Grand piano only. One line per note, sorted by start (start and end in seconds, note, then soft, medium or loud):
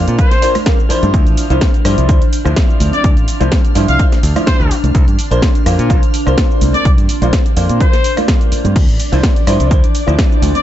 0.00 0.16 A#3 medium
0.00 0.16 D4 medium
0.00 0.16 F4 medium
0.00 0.16 C5 medium
0.18 0.29 A#3 medium
0.18 0.29 D4 medium
0.18 0.29 F4 medium
0.18 0.30 C5 loud
0.42 0.53 A#3 medium
0.42 0.53 D4 medium
0.42 0.53 F4 medium
0.42 0.53 C5 loud
0.66 0.77 A#3 loud
0.66 0.77 D4 medium
0.66 0.77 F4 medium
0.66 0.77 A#4 loud
0.89 1.47 F3 medium
0.89 1.47 D4 medium
0.89 1.47 E4 medium
0.89 1.48 C5 loud
1.50 1.66 F3 medium
1.50 1.66 D4 medium
1.50 1.66 E4 medium
1.50 1.66 C5 medium
1.84 2.06 F3 medium
1.84 2.06 D4 medium
1.84 2.06 E4 medium
1.84 2.06 C5 medium
2.08 2.20 F3 medium
2.08 2.20 D4 medium
2.08 2.20 E4 medium
2.08 2.20 C5 loud
2.45 3.37 F3 medium
2.45 3.38 D4 medium
2.45 3.38 E4 medium
2.45 3.38 C5 medium
3.40 3.56 F3 medium
3.40 3.56 D4 medium
3.40 3.56 E4 medium
3.40 3.57 C5 medium
3.75 3.97 F3 medium
3.75 3.97 D4 medium
3.75 3.97 E4 medium
3.75 3.97 C5 medium
3.99 4.10 F3 medium
3.99 4.10 D4 medium
3.99 4.10 E4 medium
3.99 4.10 C5 medium
4.36 4.69 F3 medium
4.36 4.70 D4 medium
4.36 4.70 E4 medium
4.36 4.70 C5 medium
5.31 5.47 A#3 medium
5.31 5.47 D4 medium
5.31 5.47 F4 medium
5.31 5.47 C5 medium
5.66 5.87 A#3 medium
5.66 5.87 D4 medium
5.66 5.87 F4 medium
5.66 5.88 C5 medium
5.89 6.01 A#3 medium
5.89 6.01 D4 medium
5.89 6.01 F4 medium
5.89 6.01 C5 loud
6.26 7.18 A#3 medium
6.26 7.19 D4 medium
6.26 7.19 F4 medium
6.26 7.19 C5 medium
7.22 7.37 A#3 medium
7.22 7.37 D4 medium
7.22 7.38 F4 medium
7.22 7.38 C5 medium
7.56 7.78 A#3 medium
7.56 7.78 D4 medium
7.56 7.78 F4 medium
7.56 7.78 C5 medium
7.80 7.91 A#3 medium
7.80 7.91 D4 medium
7.80 7.91 F4 medium
7.80 7.92 C5 loud
8.16 8.74 A#3 medium
8.16 8.74 D4 medium
8.16 8.75 F4 medium
8.16 8.75 C5 medium
9.12 9.28 F3 medium
9.12 9.28 D4 medium
9.12 9.28 E4 medium
9.12 9.28 C5 medium
9.47 9.68 F3 medium
9.47 9.68 D4 medium
9.47 9.68 E4 medium
9.47 9.69 C5 medium
9.70 9.82 F3 medium
9.70 9.82 D4 medium
9.70 9.82 E4 medium
9.70 9.82 C5 loud
10.07 10.62 F3 medium
10.07 10.62 D4 medium
10.07 10.62 E4 medium
10.07 10.62 C5 medium